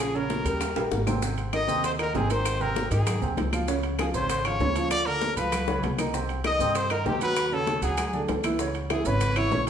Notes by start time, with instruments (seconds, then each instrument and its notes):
Already playing: upright bass A#1, trumpet G#4, flute G#5
0.00 grand piano F3 F4 G#4, high conga, high timbale, maracas
0.14 grand piano C#3 C#4 C#5, trumpet A#4, flute A#5, high conga, maracas
0.30 high bongo, high conga, high timbale, low timbale, maracas
0.45 upright bass D#2, grand piano G3 G4 A#4, high bongo, high conga, high timbale, maracas
0.61 high bongo, high conga, high timbale, claves, maracas
0.75 upright bass A#1, grand piano G3 G4 A#4, high bongo, high conga, high timbale, maracas
0.91 upright bass G#1, high bongo, high conga, maracas
1.07 grand piano C3 C4 C5, low bongo, high conga, low timbale, claves, maracas
1.22 grand piano C3 C4 C5, high bongo, high conga, maracas
1.38 high conga, high timbale, maracas
1.53 grand piano D#3 D#4 D#5, trumpet D#5, flute D#6, high bongo, high conga, high timbale, low timbale, claves, maracas
1.68 upright bass D#2, grand piano C3 C4 C5, high bongo, maracas
1.84 trumpet C5, flute C6, high bongo, high conga, high timbale, maracas
1.99 grand piano D#3 D#4 D#5, trumpet A#4, flute A#5, high bongo, high conga, high timbale, claves, maracas
2.14 upright bass G#1, grand piano C3 C4 C5, trumpet G#4, flute G#5, high bongo, low bongo, high conga, low timbale, maracas
2.30 grand piano D#3 D#4 D#5, trumpet C5, flute C6, high bongo, high timbale, maracas
2.45 high bongo, high conga, high timbale, claves, maracas
2.60 grand piano C3 C4 C5, trumpet A#4, flute A#5, high conga, maracas
2.76 high bongo, high conga, high timbale, low timbale, maracas
2.91 upright bass G#2, grand piano D#3 D#4 D#5, trumpet G#4, flute G#5, high bongo, high conga, high timbale, maracas
3.07 high bongo, high conga, low conga, high timbale, claves, maracas
3.21 upright bass D#2, grand piano C3 C4 C5, high bongo, high conga, maracas
3.37 upright bass C#2, high bongo, low bongo, high conga, high timbale, low timbale, maracas
3.53 grand piano F3 F4 F5, high bongo, high conga, high timbale, claves, maracas
3.68 grand piano C#3 C#4 C#5, high bongo, high conga, maracas
3.83 high conga, high timbale, maracas
3.99 grand piano F3 F4 F5, trumpet G#4, flute G#5, high bongo, high conga, high timbale, low timbale, claves, maracas
4.14 upright bass G#1, grand piano C#3 C#4 C5, trumpet C5, flute C6, high bongo, maracas
4.30 high bongo, high conga, high timbale, maracas
4.44 grand piano F3 F4 F5, trumpet C#5, flute C#6, high bongo, high conga, high timbale, claves, maracas
4.60 upright bass D2, grand piano C#3 C#4 C#5, high bongo, low bongo, high conga, low timbale, maracas
4.75 grand piano F3 F4 F5, high bongo, high conga, high timbale, maracas
4.90 trumpet D5, flute D6, high bongo, high conga, high timbale, claves, maracas
5.05 grand piano D3 D4 D5, trumpet A#4, flute A#5, high conga, maracas
5.21 high bongo, high conga, high timbale, low timbale, maracas
5.36 upright bass C#2, grand piano F3 F4 F5, trumpet B4, flute B5, high bongo, high conga, high timbale, maracas
5.52 high bongo, high conga, low conga, high timbale, claves, maracas
5.68 grand piano C#3 C#4 C#5, high bongo, high conga, low conga, maracas
5.83 upright bass C2, high conga, high timbale, low timbale, maracas
5.98 grand piano D#3 D#4 D#5, low bongo, high conga, high timbale, claves, maracas
6.13 grand piano C3 C4 C5, high bongo, high conga, maracas
6.29 high conga, high timbale, maracas
6.44 grand piano D#3 D#4 D#5, trumpet D#5, flute D#6, high bongo, high conga, high timbale, low timbale, claves, maracas
6.59 upright bass G2, grand piano C3 C4 C5, high bongo, maracas
6.75 trumpet C5, flute C6, high bongo, high conga, high timbale, maracas
6.90 grand piano D#3 D#4 D#5, trumpet A#4, flute A#5, high bongo, high conga, high timbale, claves, maracas
7.05 upright bass D#2, grand piano C3 C4 C5, trumpet G4, flute G5, high bongo, low bongo, high conga, low timbale, maracas
7.21 grand piano F#3 F#4 F#5, trumpet B4, flute B5, high bongo, high conga, high timbale, maracas
7.36 high bongo, high conga, high timbale, claves, maracas
7.51 grand piano C#3 C#4 C#5, trumpet A4, flute A5, high conga, maracas
7.67 high bongo, high conga, high timbale, low timbale, maracas
7.82 upright bass D2, grand piano F#3 F#4 F#5, trumpet G#4, flute G#5, high bongo, high conga, high timbale, maracas
7.97 high bongo, high conga, low conga, high timbale, claves, maracas
8.13 grand piano D3 D4 D5, high bongo, high conga, low conga, maracas
8.28 upright bass C#2, high bongo, low bongo, high conga, high timbale, low timbale, maracas
8.44 grand piano E3 E4 E5, high bongo, high conga, high timbale, claves, maracas
8.59 grand piano C#3 C#4 C#5, high bongo, maracas
8.75 high conga, high timbale, maracas
8.90 grand piano E3 E4 E5, trumpet G#4, flute G#5, high bongo, high conga, high timbale, low timbale, claves, maracas
9.05 upright bass G#1, grand piano C#3 C#4 C#5, trumpet B4, flute B5, high bongo, maracas
9.21 high bongo, high conga, high timbale, maracas
9.36 grand piano E3 E4 E5, trumpet C#5, flute C#6, high bongo, high conga, high timbale, claves, maracas
9.51 upright bass A#1, grand piano C#3 C#4 C#5, high bongo, low bongo, high conga, low timbale, maracas
9.67 grand piano F3